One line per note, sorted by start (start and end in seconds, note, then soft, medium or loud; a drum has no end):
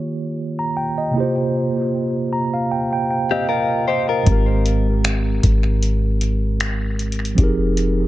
0.00 1.09 D#3 medium
0.00 1.10 A#3 medium
0.00 1.11 F4 medium
0.00 1.12 G4 medium
0.00 1.14 C#5 medium
0.59 0.76 A#5 medium
0.77 0.96 G5 medium
0.98 1.34 D#5 medium
1.11 4.21 C3 medium
1.11 4.22 A#3 medium
1.16 1.22 E4 soft
1.16 4.24 G4 medium
1.20 4.26 F4 medium
1.20 3.08 C5 medium
2.33 2.52 A#5 medium
2.54 2.70 F5 medium
2.72 2.91 G5 medium
2.93 3.09 G5 medium
3.11 3.30 G5 medium
3.31 3.48 C4 medium
3.31 3.48 G4 medium
3.31 3.48 D#5 medium
3.31 3.48 F5 medium
3.49 3.86 F4 medium
3.49 3.86 A#4 medium
3.49 3.86 F5 medium
3.88 4.08 G4 medium
3.88 4.08 C5 medium
3.88 4.24 D#5 medium
4.09 4.46 F4 medium
4.09 4.46 A#4 medium
4.09 4.31 A#4 medium
4.23 5.39 G#1 loud
4.23 7.32 G#2 medium
4.23 7.34 G#3 medium
4.23 kick loud
4.23 closed hi-hat medium
4.27 7.35 C4 medium
4.27 7.36 G4 medium
4.32 7.37 A#4 medium
4.66 closed hi-hat medium
5.04 finger snap loud
5.04 closed hi-hat medium
5.43 7.34 G#1 loud
5.43 kick medium
5.43 closed hi-hat medium
5.83 closed hi-hat medium
6.21 closed hi-hat medium
6.60 finger snap loud
6.60 closed hi-hat medium
6.99 closed hi-hat soft
7.12 closed hi-hat soft
7.25 closed hi-hat soft
7.35 8.07 F1 loud
7.35 8.07 F3 medium
7.35 8.07 C4 medium
7.35 8.07 D#4 medium
7.35 kick loud
7.35 closed hi-hat medium
7.40 8.07 G4 medium
7.40 8.07 G#4 medium
7.40 8.07 A#4 medium
7.77 closed hi-hat medium